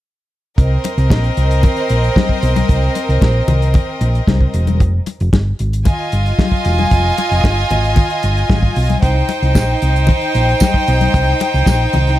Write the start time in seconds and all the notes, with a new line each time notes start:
0.58 C2 C4 A#4 D#5, kick, closed hi-hat
0.84 closed hi-hat, muted conga
0.98 C2, closed hi-hat
1.10 A#1, kick, snare, high conga
1.24 closed hi-hat
1.37 C2, closed hi-hat
1.51 closed hi-hat
1.63 kick, closed hi-hat, muted conga, low conga
1.76 closed hi-hat
1.89 A#1, closed hi-hat
2.04 closed hi-hat
2.16 kick, snare, high conga
2.29 kick
2.43 B1, closed hi-hat
2.56 closed hi-hat, high conga
2.69 C2, kick, closed hi-hat
2.95 closed hi-hat, muted conga
3.09 C2, closed hi-hat
3.22 A#1, kick, snare, high conga
3.48 C2, closed hi-hat, low conga
3.62 closed hi-hat
3.74 kick, closed hi-hat, muted conga, low conga
4.01 A#1, closed hi-hat, muted conga
4.15 closed hi-hat
4.27 C2, kick, snare, high conga
4.41 kick
4.54 E1, closed hi-hat
4.67 closed hi-hat, high conga
4.80 F1, kick, closed hi-hat
5.06 closed hi-hat, muted conga
5.20 F1, closed hi-hat
5.33 G1, kick, snare, high conga
5.59 G#1, closed hi-hat
5.73 closed hi-hat
5.85 F4 D#5 G#5, kick, closed hi-hat, muted conga, low conga
6.12 G1, closed hi-hat
6.26 closed hi-hat
6.39 kick, snare, high conga
6.52 kick
6.65 E1, closed hi-hat
6.78 closed hi-hat, high conga
6.91 F1, kick, closed hi-hat
7.18 closed hi-hat, muted conga
7.31 F1, closed hi-hat
7.44 G1, kick, snare, high conga
7.70 G#1, closed hi-hat, low conga
7.84 closed hi-hat
7.96 kick, closed hi-hat, muted conga, low conga
8.10 closed hi-hat
8.23 G1, closed hi-hat, muted conga
8.37 closed hi-hat
8.50 G#1, kick, snare, high conga
8.63 kick
8.76 B1, open hi-hat
8.89 closed hi-hat, high conga
9.01 C2 D#4 C5 G5, kick, closed hi-hat
9.29 closed hi-hat, muted conga
9.42 C2, closed hi-hat
9.55 A#1, kick, snare, tambourine, high conga
9.82 C2, closed hi-hat
9.96 closed hi-hat
10.07 kick, closed hi-hat, muted conga, low conga
10.21 closed hi-hat
10.34 A#1, closed hi-hat, muted conga
10.49 closed hi-hat
10.60 kick, snare, tambourine, high conga
10.74 kick
10.88 B1, closed hi-hat
11.01 closed hi-hat, high conga
11.14 C2, kick, closed hi-hat
11.40 closed hi-hat, muted conga
11.54 C2, closed hi-hat
11.66 A#1, kick, snare, tambourine, high conga
11.93 C2, closed hi-hat, low conga
12.07 snare, closed hi-hat